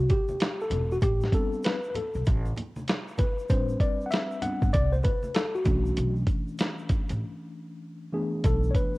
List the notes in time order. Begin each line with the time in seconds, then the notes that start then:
Already playing: F#4
0.09 G4, kick, closed hi-hat, low conga, shaker
0.29 high conga, shaker
0.40 snare, closed hi-hat, shaker
0.60 A4, shaker
0.70 E1, closed hi-hat, high conga, low conga, shaker
0.91 F#4, shaker
1.02 A1 G4, kick, closed hi-hat, shaker
1.21 snare, shaker
1.32 G3 B3 C4 D4 A4, kick, closed hi-hat, shaker
1.53 shaker
1.63 B4, snare, closed hi-hat, shaker
1.83 shaker
1.90 B4
1.94 A4, closed hi-hat, low conga, shaker
2.14 B1, shaker
2.25 A1, kick, closed hi-hat, shaker
2.45 high conga, shaker
2.56 closed hi-hat, low conga, shaker
2.76 high conga, shaker
2.88 snare, closed hi-hat, shaker
3.08 shaker
3.18 B4, kick, closed hi-hat, high conga, low conga, shaker
3.38 shaker
3.49 A1 G3 C4 D4 B4 C5, kick, closed hi-hat, shaker
3.68 shaker
3.80 D5, kick, closed hi-hat, shaker
4.00 shaker
4.06 F#5
4.11 E5, snare, closed hi-hat, shaker
4.31 shaker
4.42 G3 B3 C4 D4 F#5, closed hi-hat, low conga, shaker
4.62 G1, kick, shaker
4.73 C2 D5, kick, closed hi-hat, shaker
4.93 C5, high conga, shaker
5.03 B4, kick, closed hi-hat, low conga, shaker
5.23 high conga, shaker
5.35 A4, snare, closed hi-hat, shaker
5.55 F#4, shaker
5.65 B1 E3 A3 C#4 D4, kick, closed hi-hat, high conga, low conga, shaker
5.86 shaker
5.97 B1, closed hi-hat, shaker
6.16 shaker
6.27 kick, closed hi-hat, shaker
6.48 shaker
6.59 snare, closed hi-hat, shaker
6.78 shaker
6.89 kick, closed hi-hat, low conga, shaker
7.09 A1, closed hi-hat, shaker
8.12 E3 A3 B3 D4 G#4
8.44 B1 A4, kick, closed hi-hat, shaker
8.63 shaker
8.71 C#5, kick, closed hi-hat
8.76 B4, shaker